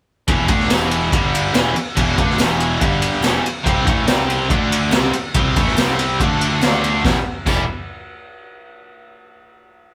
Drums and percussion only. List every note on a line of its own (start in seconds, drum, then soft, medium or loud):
0.28 kick loud
0.28 ride loud
0.48 kick loud
0.48 ride medium
0.60 snare soft
0.70 snare loud
0.70 ride loud
0.70 tambourine loud
0.91 ride medium
1.12 kick loud
1.12 ride loud
1.35 ride medium
1.54 snare loud
1.54 ride loud
1.54 tambourine loud
1.76 ride medium
1.97 kick loud
1.97 ride loud
2.18 kick loud
2.18 ride medium
2.30 snare soft
2.38 snare loud
2.38 ride loud
2.38 tambourine loud
2.60 ride medium
2.81 kick loud
2.81 ride loud
3.02 ride medium
3.22 snare loud
3.22 ride medium
3.22 tambourine loud
3.46 ride medium
3.66 kick loud
3.66 ride loud
3.87 kick loud
3.87 ride medium
4.07 snare loud
4.07 ride loud
4.07 tambourine loud
4.30 ride medium
4.50 kick loud
4.50 ride loud
4.72 ride medium
4.91 snare loud
4.91 ride loud
4.91 tambourine loud
5.13 ride medium
5.34 kick loud
5.34 ride loud
5.56 kick loud
5.56 ride medium
5.67 snare soft
5.77 snare loud
5.77 ride loud
5.77 tambourine loud
5.99 ride medium
6.20 kick loud
6.20 ride loud
6.41 ride medium
6.61 snare loud
6.61 ride medium
6.61 tambourine medium
6.84 ride medium
7.05 kick loud
7.05 snare medium
7.05 tambourine medium
7.46 kick loud
7.46 crash medium
7.46 tambourine medium